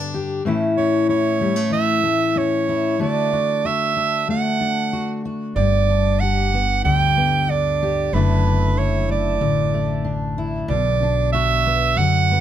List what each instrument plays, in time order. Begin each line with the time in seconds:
Already playing: steel-string acoustic guitar G2 D3 D4 G4, soprano saxophone D5
0.14 steel-string acoustic guitar G4
0.45 steel-string acoustic guitar A2 E3 A3 C#4 E4
0.77 steel-string acoustic guitar C#4, soprano saxophone C#5
1.09 steel-string acoustic guitar E4, soprano saxophone C#5
1.41 steel-string acoustic guitar G3
1.56 steel-string acoustic guitar A3
1.70 steel-string acoustic guitar E3, soprano saxophone E5
2.03 steel-string acoustic guitar A3
2.36 steel-string acoustic guitar C#4, soprano saxophone C#5
2.69 steel-string acoustic guitar E4
2.99 steel-string acoustic guitar D3 A3 D4 F#4, soprano saxophone D5
3.33 steel-string acoustic guitar F#4
3.65 steel-string acoustic guitar F#4, soprano saxophone E5
3.96 steel-string acoustic guitar D4
4.28 steel-string acoustic guitar A3, soprano saxophone F#5
4.60 steel-string acoustic guitar D4
4.93 steel-string acoustic guitar F#4
5.25 steel-string acoustic guitar F#4
5.56 upright bass G1, steel-string acoustic guitar G2, soprano saxophone D5
5.89 steel-string acoustic guitar D4
6.20 steel-string acoustic guitar G4, soprano saxophone F#5
6.54 steel-string acoustic guitar B3
6.85 upright bass D2, steel-string acoustic guitar D3, soprano saxophone G5
7.17 steel-string acoustic guitar B3
7.50 steel-string acoustic guitar D4, soprano saxophone D5
7.83 steel-string acoustic guitar G4
8.13 upright bass F#1, steel-string acoustic guitar F#2 D3 A3 D4 E4, soprano saxophone B4
8.47 steel-string acoustic guitar D4
8.77 steel-string acoustic guitar E4, soprano saxophone C#5
9.09 steel-string acoustic guitar A3, soprano saxophone D5
9.41 upright bass A1, steel-string acoustic guitar D3
9.74 steel-string acoustic guitar A3
10.04 steel-string acoustic guitar D4
10.38 steel-string acoustic guitar E4
10.68 upright bass B1, steel-string acoustic guitar B2, soprano saxophone D5
11.03 steel-string acoustic guitar D4
11.32 steel-string acoustic guitar F#4, soprano saxophone E5
11.67 steel-string acoustic guitar B3
11.96 upright bass F#2, steel-string acoustic guitar D3, soprano saxophone F#5
12.31 steel-string acoustic guitar B3